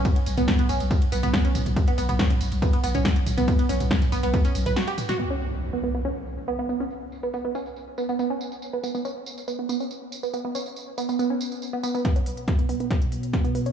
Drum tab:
RD |xxxxxxxxxxxxxxxx|xxxxxxxxxxxxxxxx|xxxxxxxxxxxxxxxx|----------------|
HH |xxoxxxoxxxoxxxox|xxoxxxoxxxoxxxox|xxoxxxoxxxoxxxox|----------------|
TB |x-xxx-xxx-xxx-xx|x-xxx-xxx-xxx-xx|x-xxxxxxxxxxxxxx|--xxx-xxx-xxx-xx|
SD |----o-------o---|----o-------o---|----o-------o--o|----------------|
T2 |---o-o-----o--oo|---o-o-----o--oo|---o-o-----o--oo|----------------|
BD |o---o---o---o---|o---o---o---o---|o---o---o-------|----------------|

RD |----------------|----------------|----------------|----------------|
HH |----------------|----------------|----------------|xxoxxxoxxxoxxxox|
TB |x-xxx-xxx-xxx-xx|x-xxx-xxx-xxx-xx|x-xxx-xxx-xxx-xx|----------------|
SD |----------------|----------------|----------------|o---o---o---o---|
T2 |----------------|----------------|----------------|----------------|
BD |----------------|----------------|----------------|o---o---o---o---|